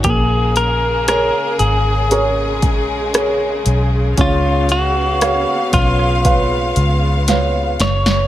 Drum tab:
HH |x-x-x-x-x-x-x-x-|x-x-x-x-x-x-x-x-|
SD |----r-------r---|----r--r----o-oo|
BD |o---------o-----|o-----o-o-------|